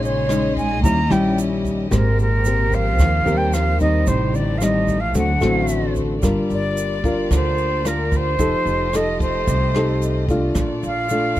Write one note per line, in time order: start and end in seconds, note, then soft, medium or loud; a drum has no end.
0.00 0.84 A#1 medium
0.00 0.81 A#2 medium
0.00 0.53 C#3 medium
0.00 0.25 G#3 medium
0.00 0.25 C#4 medium
0.00 1.90 C#4 medium
0.00 0.26 D#4 medium
0.00 0.83 G#4 medium
0.00 0.53 C#5 medium
0.00 1.89 D#5 medium
0.00 0.83 C6 medium
0.00 closed hi-hat soft
0.05 shaker soft
0.29 0.81 G#3 medium
0.29 0.82 C#4 medium
0.29 0.82 D#4 medium
0.29 cross-stick medium
0.29 closed hi-hat soft
0.29 shaker medium
0.56 0.81 G#3 medium
0.56 0.82 G#5 loud
0.56 kick soft
0.56 closed hi-hat soft
0.56 shaker soft
0.83 1.09 D#2 medium
0.83 1.89 D#3 medium
0.83 1.00 G3 medium
0.83 1.11 A#3 medium
0.83 1.00 C#4 soft
0.83 1.91 E4 medium
0.83 1.00 E4 medium
0.83 5.12 G4 medium
0.83 1.13 A#5 loud
0.83 kick medium
0.83 closed hi-hat soft
0.83 shaker medium
1.10 1.87 A#1 medium
1.10 1.37 G3 medium
1.10 1.87 G3 medium
1.10 1.87 C#4 medium
1.10 1.88 E4 medium
1.10 1.38 G5 medium
1.10 cross-stick medium
1.10 closed hi-hat soft
1.10 shaker soft
1.38 closed hi-hat soft
1.38 shaker medium
1.65 kick soft
1.65 closed hi-hat soft
1.65 shaker soft
1.91 3.00 G#1 medium
1.91 2.17 A#2 medium
1.91 2.96 G#3 medium
1.91 4.05 A#3 medium
1.91 2.26 C4 medium
1.91 2.26 G4 medium
1.91 2.26 A#4 medium
1.91 2.18 A#4 medium
1.91 5.12 C5 medium
1.91 kick medium
1.91 cross-stick medium
1.91 closed hi-hat soft
1.91 shaker medium
2.18 2.73 A#2 medium
2.18 2.76 A#4 medium
2.18 closed hi-hat soft
2.18 shaker soft
2.45 3.22 C4 medium
2.45 3.22 G4 soft
2.45 3.23 A#4 medium
2.45 closed hi-hat soft
2.45 shaker medium
2.72 3.35 F3 medium
2.72 3.39 F5 loud
2.72 kick soft
2.72 closed hi-hat soft
2.72 shaker soft
2.99 3.25 D#2 medium
2.99 4.05 D#3 medium
2.99 kick medium
2.99 cross-stick medium
2.99 closed hi-hat soft
2.99 shaker medium
3.26 4.03 D#2 medium
3.26 3.76 C4 medium
3.26 3.76 G4 medium
3.26 3.76 A#4 medium
3.26 closed hi-hat soft
3.26 shaker soft
3.33 3.53 G3 medium
3.33 3.55 G5 medium
3.52 3.79 F3 medium
3.52 3.80 F5 loud
3.52 cross-stick medium
3.52 closed hi-hat soft
3.52 shaker medium
3.80 4.08 D#3 medium
3.80 4.57 G3 medium
3.80 4.57 C4 medium
3.80 4.57 D#4 medium
3.80 4.09 D#5 medium
3.80 kick soft
3.80 closed hi-hat soft
3.80 shaker soft
4.06 5.15 A1 medium
4.06 5.12 A2 medium
4.06 4.36 C3 medium
4.06 6.21 A3 medium
4.06 5.14 D#4 medium
4.06 4.37 C5 medium
4.06 kick medium
4.06 closed hi-hat soft
4.06 shaker medium
4.34 4.57 D3 medium
4.34 4.59 D5 medium
4.34 closed hi-hat soft
4.34 shaker soft
4.55 4.63 F3 medium
4.55 4.65 F5 medium
4.61 4.99 D#3 medium
4.61 4.98 G3 soft
4.61 4.98 C4 medium
4.61 4.98 D#4 medium
4.61 5.02 D#5 medium
4.61 cross-stick medium
4.61 closed hi-hat soft
4.61 shaker medium
4.88 kick soft
4.88 closed hi-hat soft
4.88 shaker soft
4.98 5.15 F3 medium
4.98 5.17 F5 medium
5.15 5.40 D2 medium
5.15 6.20 D3 medium
5.15 5.92 F#3 medium
5.15 5.31 A3 medium
5.15 5.31 C4 medium
5.15 6.22 D4 medium
5.15 6.22 F#4 medium
5.15 5.31 F#4 medium
5.15 6.22 C5 medium
5.15 5.93 F#5 medium
5.15 kick medium
5.15 closed hi-hat soft
5.15 shaker medium
5.41 6.19 A1 medium
5.41 6.18 A3 medium
5.41 6.18 C4 medium
5.41 6.19 F#4 medium
5.41 cross-stick medium
5.41 closed hi-hat soft
5.41 shaker soft
5.68 closed hi-hat soft
5.68 shaker medium
5.95 kick soft
5.95 closed hi-hat soft
5.95 shaker soft
6.21 6.36 G1 medium
6.21 7.28 G3 soft
6.21 8.36 A#3 medium
6.21 7.00 D4 medium
6.21 10.50 F4 medium
6.21 7.00 F4 soft
6.21 10.51 G4 medium
6.21 7.00 A#4 soft
6.21 8.36 D5 medium
6.21 kick medium
6.21 cross-stick medium
6.21 closed hi-hat soft
6.21 shaker medium
6.50 7.27 G1 medium
6.50 closed hi-hat soft
6.50 shaker soft
6.54 7.29 D5 medium
6.77 closed hi-hat soft
6.77 shaker medium
7.04 7.81 D4 medium
7.04 7.81 F4 medium
7.04 7.82 A#4 medium
7.04 kick medium
7.04 closed hi-hat soft
7.04 shaker soft
7.31 8.35 D2 medium
7.31 8.37 D3 soft
7.31 kick medium
7.31 cross-stick medium
7.31 closed hi-hat soft
7.31 shaker medium
7.35 7.89 C5 medium
7.58 closed hi-hat soft
7.58 shaker soft
7.85 8.37 D4 medium
7.85 8.37 F4 soft
7.85 8.38 A#4 medium
7.85 8.18 A#4 medium
7.85 cross-stick medium
7.85 closed hi-hat soft
7.85 shaker medium
8.12 kick medium
8.12 closed hi-hat soft
8.12 shaker soft
8.16 8.98 C5 loud
8.38 8.52 F1 medium
8.38 9.45 F3 soft
8.38 10.53 A3 medium
8.38 8.89 D#4 soft
8.38 8.89 G4 medium
8.38 8.89 A4 medium
8.38 10.52 D#5 medium
8.38 kick medium
8.38 closed hi-hat soft
8.38 shaker medium
8.66 9.43 F1 medium
8.66 closed hi-hat soft
8.66 shaker soft
8.93 9.71 D#4 soft
8.93 9.70 G4 medium
8.93 9.71 A4 medium
8.93 9.21 D#5 medium
8.93 cross-stick medium
8.93 closed hi-hat soft
8.93 shaker medium
9.20 10.25 C5 medium
9.20 kick medium
9.20 closed hi-hat soft
9.20 shaker soft
9.48 10.51 C2 medium
9.48 10.53 C3 soft
9.48 kick medium
9.48 closed hi-hat soft
9.48 shaker medium
9.74 10.25 D#4 medium
9.74 10.25 G4 medium
9.74 10.25 A4 medium
9.74 cross-stick medium
9.74 closed hi-hat soft
9.74 shaker soft
10.02 closed hi-hat soft
10.02 shaker medium
10.28 11.10 A3 medium
10.28 11.10 D4 medium
10.28 11.11 F4 medium
10.28 kick medium
10.28 closed hi-hat soft
10.28 shaker soft
10.55 10.68 A#1 medium
10.55 11.40 A#2 medium
10.55 11.40 F4 medium
10.55 11.40 A4 medium
10.55 11.40 D5 medium
10.55 kick medium
10.55 cross-stick medium
10.55 closed hi-hat soft
10.55 shaker medium
10.83 11.40 A#1 medium
10.83 11.40 F5 loud
10.83 closed hi-hat soft
10.83 shaker soft
11.09 11.40 A3 medium
11.09 11.40 D4 medium
11.09 11.40 F4 medium
11.09 closed hi-hat soft
11.09 shaker medium
11.36 shaker soft